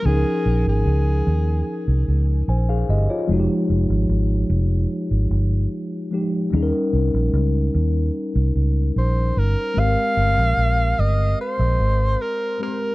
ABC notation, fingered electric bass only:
X:1
M:4/4
L:1/16
Q:1/4=74
K:Ab
V:1 name="Fingered electric bass" clef=bass
D,, z B,,, A,,, D,,2 E,,2 z C,, D,,2 B,,,2 G,,, z | F,,, z F,,, A,,, A,,,2 F,,,2 z A,,, G,,,2 z4 | E,, z C,, B,,, D,,2 E,,2 z C,, D,,2 B,,,2 G,,, z | A,,, z G,,, B,,, B,,,2 G,,,2 z B,,, A,,,2 z4 |]